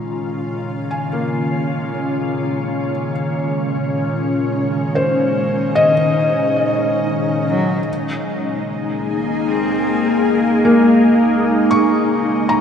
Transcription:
Already playing: ambient pad A#2 D#3 G#3 C#4 F4, synth drone C#3 C#4, felt piano A#5 C#6
0.91 felt piano G#5
1.13 felt piano A#3
4.30 ambient pad D#4
4.95 felt piano C5
5.75 felt piano D#5
7.48 cello F#3
7.88 cello section C#2, cello G#3
8.01 ambient pad G#3
8.11 ambient pad G#4
8.32 ambient pad A#3
9.09 cello A#3
9.48 cello C4
10.29 cello G#3
10.65 felt piano A#3
11.71 felt piano C#6
12.49 ambient pad C4, felt piano A#5

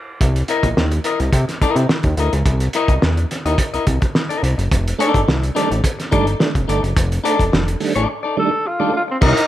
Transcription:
0.21 analog synth bass C2, kick, closed hi-hat
0.36 closed hi-hat
0.48 clean electric guitar E4 A#4 D#5, closed hi-hat
0.63 analog synth bass A#1, kick, closed hi-hat
0.77 analog synth bass D#2, snare
0.92 muted clean electric guitar stroke, closed hi-hat
1.04 clean electric guitar E4 A#4 D#5, closed hi-hat
1.20 analog synth bass C2, muted clean electric guitar stroke, closed hi-hat
1.32 analog synth bass C3, muted clean electric guitar stroke, kick, closed hi-hat
1.48 muted clean electric guitar stroke, snare, closed hi-hat
1.61 analog synth bass C3, clean electric guitar E4 A#4 D#5, kick, closed hi-hat
1.76 analog synth bass C3, muted clean electric guitar stroke, closed hi-hat
1.89 muted clean electric guitar stroke, snare
2.03 analog synth bass D#2, kick, closed hi-hat
2.17 analog synth bass D2, clean electric guitar E4 A#4 D#5, closed hi-hat
2.33 analog synth bass C#2, muted clean electric guitar stroke, closed hi-hat
2.46 analog synth bass C2, kick, closed hi-hat
2.60 closed hi-hat
2.73 clean electric guitar E4 A#4 D#5, closed hi-hat
2.88 analog synth bass C2, kick, closed hi-hat
3.02 analog synth bass E2, muted clean electric guitar stroke, snare
3.17 muted clean electric guitar stroke, closed hi-hat
3.31 snare, closed hi-hat
3.45 analog synth bass D#2, clean electric guitar E4 A#4 D#5, closed hi-hat
3.58 muted clean electric guitar stroke, kick, closed hi-hat
3.74 analog synth bass C2, clean electric guitar E4 A#4 D#5, closed hi-hat
3.87 analog synth bass C2, kick, closed hi-hat
4.01 muted clean electric guitar stroke, kick, closed hi-hat
4.15 muted clean electric guitar stroke, snare
4.29 clean electric guitar E4 A#4 D#5, closed hi-hat
4.43 analog synth bass C2, muted clean electric guitar stroke, closed hi-hat
4.58 analog synth bass F#1, muted clean electric guitar stroke, closed hi-hat
4.71 analog synth bass F1, kick, closed hi-hat
4.88 closed hi-hat
4.99 tonewheel organ A3 D4, clean electric guitar D#4 A4 D5, closed hi-hat
5.14 analog synth bass G1, kick, closed hi-hat
5.28 analog synth bass C2, tonewheel organ A3 D4, snare
5.43 muted clean electric guitar stroke, closed hi-hat
5.55 tonewheel organ D#3 G3 A3 D4, clean electric guitar D#4 A4 D5, snare, closed hi-hat
5.71 analog synth bass A1, muted clean electric guitar stroke, closed hi-hat
5.84 muted clean electric guitar stroke, kick, closed hi-hat
5.99 muted clean electric guitar stroke, snare, closed hi-hat
6.11 analog synth bass G1, tonewheel organ D#3 G3 A3 D4, clean electric guitar D#4 A4 D5, kick, closed hi-hat
6.27 muted clean electric guitar stroke, closed hi-hat
6.40 tonewheel organ A3 D4, muted clean electric guitar stroke, snare
6.55 analog synth bass F1, kick, closed hi-hat
6.67 analog synth bass G1, tonewheel organ A3 D4, clean electric guitar D#4 A4 D5, closed hi-hat
6.83 analog synth bass F#1, muted clean electric guitar stroke, closed hi-hat
6.96 analog synth bass F1, kick, closed hi-hat
7.12 closed hi-hat
7.24 tonewheel organ A3 D4, clean electric guitar D#4 A4 D5, closed hi-hat
7.39 analog synth bass F1, kick, closed hi-hat
7.52 analog synth bass F1, tonewheel organ A3 D4, muted clean electric guitar stroke, snare
7.67 muted clean electric guitar stroke, closed hi-hat
7.80 tonewheel organ D#3 G3 A3 D4, open hi-hat
7.96 analog synth bass A1, clean electric guitar D#4 A4 D5, closed hi-hat
8.08 muted clean electric guitar stroke
8.23 clean electric guitar D#4 A4 D5
8.37 tonewheel organ D#3 G3 A3 D4, alto saxophone A4, muted clean electric guitar stroke
8.51 muted clean electric guitar stroke
8.65 alto saxophone F4, muted clean electric guitar stroke
8.79 tonewheel organ D#3 G3 A3 D4, clean electric guitar D#4 A4 D5
8.93 tonewheel organ A3 D4, alto saxophone F4, muted clean electric guitar stroke
9.08 alto saxophone C4, muted clean electric guitar stroke
9.21 analog synth bass C2, tonewheel organ C3, alto saxophone D#4, clean electric guitar E4 A#4 D#5, kick, crash
9.37 closed hi-hat

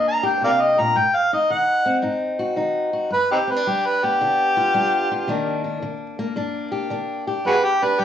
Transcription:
Already playing: steel-string acoustic guitar G2 A#3 D4
0.08 harmonica A#5
0.23 steel-string acoustic guitar G4, harmonica G5
0.41 steel-string acoustic guitar C3, harmonica A#4 D5 F5
0.61 harmonica D#5
0.79 steel-string acoustic guitar A#2, harmonica A#5
0.96 steel-string acoustic guitar G#2, harmonica G5
1.16 harmonica F5
1.33 steel-string acoustic guitar D#4, harmonica D#5
1.50 steel-string acoustic guitar D#3, harmonica F#5
1.86 steel-string acoustic guitar C4
2.02 steel-string acoustic guitar G#2 D#4
2.39 steel-string acoustic guitar F#4
2.56 steel-string acoustic guitar D#3 D#4
2.93 steel-string acoustic guitar F#4
3.10 steel-string acoustic guitar G2, harmonica B4
3.31 harmonica C4 D#4 G4
3.47 steel-string acoustic guitar C4, harmonica B4
3.56 steel-string acoustic guitar D4
3.67 steel-string acoustic guitar G3, harmonica G4
3.86 harmonica B4
4.04 steel-string acoustic guitar B3, harmonica G4
4.21 steel-string acoustic guitar D3 D4
4.57 steel-string acoustic guitar F4
4.74 steel-string acoustic guitar G3 D4
5.11 steel-string acoustic guitar F4
5.27 steel-string acoustic guitar C3 D#3 A#3 D4
5.64 steel-string acoustic guitar D4
5.82 steel-string acoustic guitar D#3
6.19 steel-string acoustic guitar A#3
6.36 steel-string acoustic guitar G2 D4
6.72 steel-string acoustic guitar G4
6.90 steel-string acoustic guitar D#3 D4
7.27 steel-string acoustic guitar G4
7.45 steel-string acoustic guitar G2, harmonica F#4 G#4 B4
7.64 harmonica G4
7.82 steel-string acoustic guitar D4, harmonica B4
7.99 steel-string acoustic guitar G3, harmonica G4

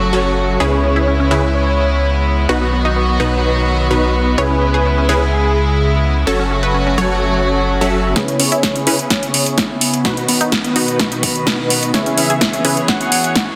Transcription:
Already playing: sub bass F#1, string section C#3 F#3 A3 F#4, supersaw synth F#3 C#4 F#4 A4 C#5, synth pluck E4
0.13 supersaw synth F#3 C#4 F#4 A4 C#5
0.60 sub bass C#2, supersaw synth C#3 C#4 E4 G#4 B4, string section G#3 B3 E4, synth pluck G#4, analog synth lead C#5
0.72 synth pluck C#4
0.84 synth pluck C#4
0.96 synth pluck E4
1.07 synth pluck C#4
1.20 synth pluck C#4
1.31 supersaw synth C#3 C#4 E4 G#4 B4, synth pluck E4
1.54 analog synth lead C#5
2.49 sub bass B1, supersaw synth B2 B3 D#4 F#4 B4, string section D#3 F#3 F#4, synth pluck F#4
2.61 synth pluck B3
2.73 synth pluck B3
2.85 synth pluck D#4
2.96 synth pluck B3
3.08 synth pluck B3
3.20 supersaw synth B2 B3 D#4 F#4 B4, synth pluck D#4
3.91 supersaw synth B2 B3 D#4 F#4 B4
4.38 sub bass C#2, string section C#3 G#3 E4, supersaw synth C#3 C#4 E4 G#4 B4, analog synth lead B4, synth pluck C#5
4.50 synth pluck C#4
4.62 synth pluck C#4
4.74 synth pluck G#4
4.85 synth pluck C#4
4.98 synth pluck C#4
5.09 supersaw synth C#3 C#4 E4 G#4 B4, synth pluck G#4
5.32 analog synth lead G#4
6.27 sub bass F#1, supersaw synth F#3 C#4 F#4 A4 C#5, string section F#3 A3 F#4, synth pluck A4
6.39 synth pluck C#4
6.51 synth pluck C#4
6.63 synth pluck B4
6.74 synth pluck C#4
6.87 synth pluck C#4
6.98 supersaw synth F#3 C#4 F#4 A4 C#5, synth pluck C#5
7.22 swell
7.81 supersaw synth F#3 C#4 F#4 A4 E5
8.16 string section C#3 B3 E4 G#4, supersaw synth C#3 C#4 E4 G#4 B4, synth pluck G#4, analog synth lead C#5, kick, snare, closed hi-hat
8.28 synth pluck C#4, closed hi-hat
8.40 synth pluck C#4, open hi-hat
8.52 synth pluck E4, closed hi-hat
8.63 synth pluck C#4, kick, snare, closed hi-hat
8.76 synth pluck C#4, closed hi-hat
8.87 supersaw synth C#3 C#4 E4 G#4 B4, synth pluck E4, open hi-hat
8.99 closed hi-hat
9.10 analog synth lead C#5, kick, snare, closed hi-hat
9.23 closed hi-hat
9.34 open hi-hat
9.46 closed hi-hat
9.58 kick, snare, closed hi-hat
9.81 open hi-hat
9.94 closed hi-hat
10.05 supersaw synth B2 B3 D#4 F#4 B4, string section D#3 F#4 B4, synth pluck F#4, kick, snare, closed hi-hat
10.17 synth pluck B3, closed hi-hat
10.29 synth pluck B3, open hi-hat
10.41 synth pluck D#4, closed hi-hat
10.52 synth pluck B3, kick, snare, closed hi-hat
10.64 synth pluck B3, closed hi-hat
10.76 supersaw synth B2 B3 D#4 F#4 B4, synth pluck D#4, open hi-hat
10.88 closed hi-hat
10.99 kick, snare, closed hi-hat
11.12 closed hi-hat
11.23 kick, open hi-hat
11.35 closed hi-hat
11.47 supersaw synth B2 B3 D#4 F#4 B4, kick, snare, closed hi-hat
11.70 open hi-hat
11.83 closed hi-hat
11.94 supersaw synth C#3 C#4 E4 G#4 B4, string section E3 G#4 C#5, synth pluck C#5, analog synth lead E5, kick, snare, closed hi-hat
12.06 synth pluck C#4, closed hi-hat
12.18 synth pluck C#4, open hi-hat
12.30 synth pluck G#4, closed hi-hat
12.41 synth pluck C#4, kick, snare, closed hi-hat
12.53 synth pluck C#4, closed hi-hat
12.65 supersaw synth C#3 C#4 E4 G#4 B4, synth pluck G#4, open hi-hat
12.77 closed hi-hat
12.88 analog synth lead F#5, kick, snare, closed hi-hat
13.01 closed hi-hat
13.12 open hi-hat
13.24 closed hi-hat
13.36 kick, snare, closed hi-hat

